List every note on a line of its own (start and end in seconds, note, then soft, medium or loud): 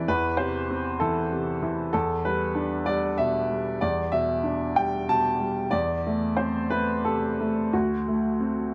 0.00 0.08 E2 soft
0.00 0.10 C3 soft
0.00 0.27 E3 soft
0.00 0.10 C4 soft
0.00 0.10 A4 medium
0.00 0.08 B4 medium
0.00 0.10 D5 medium
0.00 0.10 E5 medium
0.08 1.90 E2 soft
0.08 0.40 B4 medium
0.37 0.88 C3 soft
0.37 1.00 C5 medium
0.71 1.20 C4 soft
1.00 1.51 E3 soft
1.00 1.91 A4 medium
1.32 1.81 C3 soft
1.62 1.94 E3 soft
1.93 3.79 E2 soft
1.93 2.25 A4 medium
2.25 2.76 G3 soft
2.25 2.88 B4 medium
2.55 3.06 D4 soft
2.86 3.38 G3 soft
2.86 3.19 D5 medium
3.18 3.70 B2 soft
3.18 3.82 E5 medium
3.51 4.01 G3 soft
3.81 5.69 E2 soft
3.81 4.13 D5 medium
4.12 4.65 B2 soft
4.12 4.77 E5 medium
4.43 4.96 D4 soft
4.76 5.29 G3 soft
4.76 5.09 G5 medium
5.09 5.60 B2 soft
5.09 5.73 A5 medium
5.40 5.73 G3 soft
5.71 7.68 E2 soft
5.71 6.36 D5 medium
6.07 6.58 A3 soft
6.37 6.91 C4 soft
6.37 6.70 C5 medium
6.70 7.25 A3 soft
6.70 7.04 B4 medium
7.05 7.60 C3 soft
7.05 7.73 A4 medium
7.40 7.74 A3 soft
7.73 8.74 D2 soft
7.73 8.74 F#4 medium
8.08 8.62 A3 soft
8.40 8.74 C4 soft